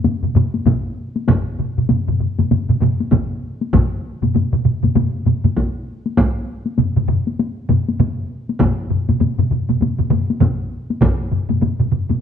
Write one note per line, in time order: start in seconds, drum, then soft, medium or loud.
0.04 taiko low-mid medium
0.04 taiko mid medium
0.04 taiko high medium
0.23 taiko low-mid medium
0.23 taiko mid medium
0.35 taiko low-mid medium
0.35 taiko mid medium
0.35 taiko high soft
0.54 taiko high medium
0.66 taiko medium
0.66 taiko low-mid medium
0.66 taiko mid medium
0.66 taiko high medium
1.16 taiko high soft
1.28 taiko medium
1.28 taiko low-mid medium
1.28 taiko mid medium
1.28 taiko high medium
1.59 taiko low-mid medium
1.59 taiko mid medium
1.78 taiko low-mid medium
1.78 taiko mid medium
1.89 taiko low-mid medium
1.89 taiko mid medium
1.89 taiko high medium
2.08 taiko low-mid medium
2.08 taiko mid medium
2.20 taiko low-mid medium
2.20 taiko mid medium
2.39 taiko low-mid medium
2.39 taiko mid medium
2.39 taiko high soft
2.51 taiko low-mid medium
2.51 taiko mid medium
2.51 taiko high medium
2.69 taiko low-mid medium
2.69 taiko mid medium
2.81 taiko low-mid medium
2.81 taiko mid medium
2.81 taiko high soft
3.00 taiko high medium
3.12 taiko medium
3.12 taiko low-mid medium
3.12 taiko mid medium
3.12 taiko high medium
3.61 taiko high soft
3.73 taiko medium
3.73 taiko low-mid medium
3.73 taiko mid medium
3.73 taiko high medium
4.22 taiko low-mid medium
4.22 taiko mid medium
4.22 taiko high soft
4.34 taiko low-mid medium
4.34 taiko mid medium
4.34 taiko high medium
4.53 taiko low-mid medium
4.53 taiko mid medium
4.65 taiko low-mid medium
4.65 taiko mid medium
4.83 taiko low-mid medium
4.83 taiko mid medium
4.83 taiko high soft
4.95 taiko low-mid medium
4.95 taiko mid medium
4.95 taiko high medium
5.25 taiko low-mid medium
5.25 taiko mid medium
5.25 taiko high soft
5.44 taiko low-mid medium
5.44 taiko mid medium
5.44 taiko high soft
5.57 taiko medium
5.57 taiko high medium
6.06 taiko high soft
6.17 taiko medium
6.17 taiko high medium
6.66 taiko high soft
6.78 taiko low-mid medium
6.78 taiko mid medium
6.78 taiko high medium
6.96 taiko low-mid medium
6.96 taiko mid medium
7.08 taiko low-mid medium
7.08 taiko mid medium
7.27 taiko high soft
7.39 taiko high medium
7.69 taiko low-mid medium
7.69 taiko mid medium
7.69 taiko high soft
7.88 taiko high medium
7.99 taiko low-mid medium
7.99 taiko mid medium
7.99 taiko high medium
8.49 taiko high medium
8.60 taiko medium
8.60 taiko low-mid medium
8.60 taiko mid medium
8.60 taiko high medium
8.90 taiko low-mid medium
8.90 taiko mid medium
9.09 taiko low-mid medium
9.09 taiko mid medium
9.09 taiko high soft
9.21 taiko low-mid medium
9.21 taiko mid medium
9.21 taiko high medium
9.39 taiko low-mid medium
9.39 taiko mid medium
9.51 taiko low-mid medium
9.51 taiko mid medium
9.69 taiko low-mid medium
9.69 taiko mid medium
9.69 taiko high soft
9.81 taiko low-mid medium
9.81 taiko mid medium
9.81 taiko high medium
9.99 taiko low-mid medium
9.99 taiko mid medium
10.10 taiko low-mid medium
10.10 taiko mid loud
10.10 taiko high soft
10.30 taiko high medium
10.40 taiko medium
10.40 taiko low-mid loud
10.40 taiko mid medium
10.40 taiko high medium
10.90 taiko high medium
11.01 taiko medium
11.01 taiko low-mid medium
11.01 taiko mid medium
11.01 taiko high medium
11.32 taiko low-mid medium
11.32 taiko mid medium
11.49 taiko low-mid medium
11.49 taiko mid medium
11.49 taiko high medium
11.61 taiko low-mid medium
11.61 taiko mid medium
11.61 taiko high medium
11.80 taiko low-mid medium
11.80 taiko mid medium
11.92 taiko low-mid medium
11.92 taiko mid medium
12.10 taiko low-mid medium
12.10 taiko mid medium
12.10 taiko high soft